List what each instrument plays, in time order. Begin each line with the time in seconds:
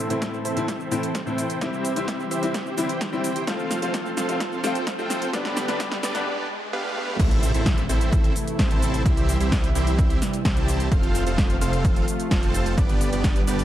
Already playing: analog synth pad E3 C4 A4 C5, riser
0.10 grand piano A2 E3 A3 C4 E4, supersaw synth C4 E4 A4 C5 E5, closed hi-hat, shaker
0.22 kick, snare, closed hi-hat, shaker
0.34 shaker
0.45 supersaw synth C4 E4 A4 C5 E5, open hi-hat, shaker
0.56 grand piano A2 E3 A3 C4 E4, closed hi-hat, shaker
0.68 kick, snare, closed hi-hat, shaker
0.80 shaker
0.91 grand piano A2 E3 A3 C4 E4, supersaw synth C4 E4 A4 C5 G5, open hi-hat, shaker
1.03 closed hi-hat, shaker
1.15 kick, snare, closed hi-hat, shaker
1.26 grand piano A2 E3 A3 C4 E4, supersaw synth C4 E4 A4 C5 G5, shaker
1.38 open hi-hat, shaker
1.50 closed hi-hat, shaker
1.61 grand piano E3 G3 C4 E4, supersaw synth C4 E4 G4 C5 E5, analog synth pad G4, kick, snare, closed hi-hat, shaker
1.73 shaker
1.85 open hi-hat, shaker
1.96 grand piano E3 G3 C4 E4, supersaw synth C4 E4 G4 C5 E5, closed hi-hat, shaker
2.08 kick, snare, closed hi-hat, shaker
2.20 shaker
2.31 supersaw synth C4 E4 G4 C5 E5, open hi-hat, shaker
2.42 grand piano E3 G3 C4 E4, closed hi-hat, shaker
2.54 kick, snare, closed hi-hat, shaker
2.66 shaker
2.77 grand piano E3 G3 C4 E4, supersaw synth C4 E4 G4 C5 G5, open hi-hat, shaker
2.89 closed hi-hat, shaker
3.01 kick, snare, closed hi-hat, shaker
3.12 grand piano E3 G3 C4 E4, supersaw synth C4 E4 G4 C5 G5, shaker
3.24 open hi-hat, shaker
3.36 closed hi-hat, shaker
3.47 grand piano F3 A3 C4 F4, analog synth pad F3 C4 A4, supersaw synth C4 F4 A4 C5 F5, kick, snare, closed hi-hat, shaker
3.59 shaker
3.71 snare, open hi-hat, shaker
3.82 grand piano F3 A3 C4 F4, supersaw synth C4 F4 A4 C5 F5, closed hi-hat, shaker
3.94 kick, snare, closed hi-hat, shaker
4.06 shaker
4.17 supersaw synth C4 F4 A4 C5 F5, snare, open hi-hat, shaker
4.28 grand piano F3 A3 C4 F4, closed hi-hat, shaker
4.40 kick, snare, closed hi-hat, shaker
4.52 shaker
4.63 grand piano F3 A3 C4 F4, supersaw synth C4 F4 A4 C5 G5, snare, open hi-hat, shaker
4.75 closed hi-hat, shaker
4.87 kick, snare, closed hi-hat, shaker
4.98 grand piano F3 A3 C4 F4, supersaw synth C4 F4 A4 C5 G5, shaker
5.10 snare, open hi-hat, shaker
5.22 closed hi-hat, shaker
5.33 grand piano G2 D3 G3 B3 D4, analog synth pad D3 B3 G4 B4, supersaw synth B3 D4 G4 B4 D5, kick, snare, closed hi-hat, shaker
5.45 snare, shaker
5.57 snare, open hi-hat, shaker
5.68 grand piano G2 D3 G3 B3 D4, supersaw synth B3 D4 G4 B4 D5, snare, closed hi-hat, shaker
5.80 kick, snare, closed hi-hat, shaker
5.92 snare, shaker
6.03 supersaw synth B3 D4 G4 B4 D5, snare, open hi-hat, shaker
6.14 grand piano G2 D3 G3 B3 D4, snare, closed hi-hat, shaker
6.73 supersaw synth B3 D4 G4 B4 F5
7.19 detuned saw bass A1, analog synth pad C3 E3 A3 E4, supersaw synth C4 E4 A4 C5 E5, kick, closed hi-hat, crash, impact, shaker
7.31 closed hi-hat, shaker
7.43 open hi-hat, shaker
7.54 detuned saw bass A1, supersaw synth C4 E4 A4 C5 E5, closed hi-hat, shaker
7.66 kick, snare, closed hi-hat, shaker
7.78 closed hi-hat, shaker
7.89 detuned saw bass A1, supersaw synth C4 E4 A4 C5 E5, open hi-hat, shaker
8.01 closed hi-hat, shaker
8.13 kick, closed hi-hat, shaker
8.24 closed hi-hat, shaker
8.36 open hi-hat, shaker
8.47 closed hi-hat, shaker
8.59 detuned saw bass A1, supersaw synth C4 E4 A4 C5 A5, kick, snare, closed hi-hat, shaker
8.71 closed hi-hat, shaker
8.82 open hi-hat, shaker
8.94 closed hi-hat, shaker
9.06 detuned saw bass C2, analog synth pad G3, supersaw synth C4 E4 G4 C5 E5, kick, closed hi-hat, shaker
9.17 closed hi-hat, shaker
9.29 open hi-hat, shaker
9.40 detuned saw bass C2, supersaw synth C4 E4 G4 C5 E5, closed hi-hat, shaker
9.52 kick, snare, closed hi-hat, shaker
9.64 closed hi-hat, shaker
9.75 detuned saw bass C2, supersaw synth C4 E4 G4 C5 E5, open hi-hat, shaker
9.87 closed hi-hat, shaker
9.99 kick, closed hi-hat, shaker
10.10 closed hi-hat, shaker
10.22 snare, open hi-hat, shaker
10.34 closed hi-hat, shaker
10.45 detuned saw bass C2, supersaw synth C4 E4 G4 C5 A5, kick, snare, closed hi-hat, shaker
10.57 closed hi-hat, shaker
10.68 open hi-hat, shaker
10.80 closed hi-hat, shaker
10.92 detuned saw bass F1, analog synth pad C3 F3 A3 F4, supersaw synth C4 F4 A4 C5 F5, kick, closed hi-hat, shaker
11.03 closed hi-hat, shaker
11.15 open hi-hat, shaker
11.26 detuned saw bass F1, supersaw synth C4 F4 A4 C5 F5, closed hi-hat, shaker
11.38 kick, snare, closed hi-hat, shaker
11.50 closed hi-hat, shaker
11.61 detuned saw bass F1, supersaw synth C4 F4 A4 C5 F5, open hi-hat, shaker
11.73 closed hi-hat, shaker
11.85 kick, closed hi-hat, shaker
11.96 closed hi-hat, shaker
12.08 open hi-hat, shaker
12.20 closed hi-hat, shaker
12.31 detuned saw bass F1, supersaw synth C4 F4 A4 C5 A5, kick, snare, closed hi-hat, shaker
12.43 closed hi-hat, shaker
12.54 open hi-hat, shaker
12.66 closed hi-hat, shaker
12.78 detuned saw bass G1, analog synth pad D3 G3 B3 G4, supersaw synth B3 D4 G4 B4 D5, kick, closed hi-hat, shaker
12.89 closed hi-hat, shaker
13.01 open hi-hat, shaker
13.13 detuned saw bass G1, supersaw synth B3 D4 G4 B4 D5, closed hi-hat, shaker
13.24 kick, snare, closed hi-hat, shaker
13.36 closed hi-hat, shaker
13.47 detuned saw bass G1, supersaw synth B3 D4 G4 B4 D5, open hi-hat, shaker
13.59 closed hi-hat, shaker